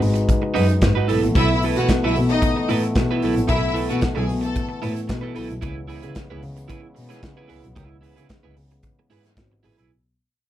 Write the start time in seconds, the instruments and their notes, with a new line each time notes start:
Already playing: french horn section G#3 D#4 F#4 B4
0.01 double bass G#2, muted clean electric guitar stroke, open hi-hat
0.14 muted clean electric guitar stroke, closed hi-hat
0.29 kick, closed hi-hat
0.42 muted clean electric guitar stroke
0.54 double bass F#2, clean electric guitar D#4 F#4 B4, open hi-hat
0.68 muted clean electric guitar stroke, closed hi-hat
0.81 double bass G#2, muted clean electric guitar stroke, kick, snare, closed hi-hat
0.95 clean electric guitar D#4 F#4 B4
1.08 double bass B1, french horn section E3 A3 B3, clean electric guitar E4 A4 B4, open hi-hat
1.23 double bass A1, muted clean electric guitar stroke, closed hi-hat
1.35 double bass B1, clean electric guitar E4 A4 B4, string section E4 E5, kick, closed hi-hat
1.51 muted clean electric guitar stroke
1.62 clean electric guitar E4 A4 B4, open hi-hat
1.76 double bass B2, string section F#4 F#5, clean electric guitar B4, closed hi-hat
1.80 clean electric guitar E4 A4
1.88 muted clean electric guitar stroke, kick, snare, closed hi-hat
2.03 double bass B1, string section E4 E5, clean electric guitar E4 A4 B4
2.16 double bass B2, muted clean electric guitar stroke, open hi-hat
2.29 string section D#4 D#5, muted clean electric guitar stroke, closed hi-hat
2.42 kick, closed hi-hat
2.56 muted clean electric guitar stroke
2.69 double bass A2, clean electric guitar E4 A4 B4, open hi-hat
2.82 muted clean electric guitar stroke, closed hi-hat
2.95 double bass B2, muted clean electric guitar stroke, kick, snare, closed hi-hat
3.11 clean electric guitar E4 A4 B4
3.22 double bass B1, clean electric guitar E4 A4 B4, open hi-hat
3.36 double bass A1, muted clean electric guitar stroke, closed hi-hat
3.48 double bass B1, clean electric guitar E4 A4 B4, string section E4 E5, kick, closed hi-hat
3.61 muted clean electric guitar stroke
3.74 clean electric guitar E4 A4 B4, open hi-hat
3.89 double bass B2, clean electric guitar E4 A4 B4, string section F#4 F#5, closed hi-hat
4.01 muted clean electric guitar stroke, kick, snare, closed hi-hat
4.15 double bass B1, clean electric guitar E4 A4 B4, string section G#4 G#5
4.27 double bass B2, muted clean electric guitar stroke, open hi-hat
4.41 string section A4 A5, muted clean electric guitar stroke, closed hi-hat
4.55 kick, closed hi-hat
4.69 muted clean electric guitar stroke
4.82 double bass A2, clean electric guitar E4 A4 B4, open hi-hat
4.94 muted clean electric guitar stroke, closed hi-hat
5.08 double bass B2, muted clean electric guitar stroke, kick, snare, closed hi-hat
5.21 clean electric guitar E4 A4 B4
5.35 double bass B1, clean electric guitar E4 A4 B4, open hi-hat
5.49 double bass B1, muted clean electric guitar stroke, closed hi-hat
5.61 double bass C#2, french horn section C#3 G#3 B3, clean electric guitar E4 G#4 B4, kick, closed hi-hat
5.76 muted clean electric guitar stroke
5.88 clean electric guitar E4 G#4 B4, open hi-hat
6.02 double bass C#3, clean electric guitar E4 G#4 B4, closed hi-hat
6.15 muted clean electric guitar stroke, kick, snare, closed hi-hat
6.30 double bass C#2, clean electric guitar E4 G#4 B4
6.43 double bass C#3, muted clean electric guitar stroke, open hi-hat
6.56 muted clean electric guitar stroke, closed hi-hat
6.68 clean electric guitar E4 G#4 B4, kick, closed hi-hat
6.82 muted clean electric guitar stroke
6.95 double bass B2, muted clean electric guitar stroke, open hi-hat
7.09 clean electric guitar E4 G#4 B4, snare, closed hi-hat
7.23 double bass C#3, kick, snare, closed hi-hat
7.37 clean electric guitar E4 G#4 B4
7.48 double bass C#2, clean electric guitar E4 G#4 B4, open hi-hat
7.63 double bass B1, muted clean electric guitar stroke, closed hi-hat
7.76 double bass C#2, clean electric guitar E4 G#4 B4, kick, closed hi-hat
7.90 muted clean electric guitar stroke
8.01 clean electric guitar E4 G#4 B4, open hi-hat
8.16 double bass C#3, clean electric guitar E4 G#4 B4, closed hi-hat
8.28 muted clean electric guitar stroke, kick, snare, closed hi-hat
8.43 double bass C#2, clean electric guitar E4 G#4 B4
8.56 double bass C#3, muted clean electric guitar stroke, open hi-hat
8.70 muted clean electric guitar stroke, closed hi-hat
8.83 kick, closed hi-hat
8.99 muted clean electric guitar stroke
9.10 double bass G#2, clean electric guitar E4 G#4 B4, open hi-hat
9.24 muted clean electric guitar stroke, snare, closed hi-hat
9.37 double bass G#1, muted clean electric guitar stroke, kick, snare, closed hi-hat
9.52 muted clean electric guitar stroke
9.63 double bass A1, clean electric guitar E4 G#4 B4, open hi-hat
9.77 double bass B1, clean electric guitar E4 G#4 B4, closed hi-hat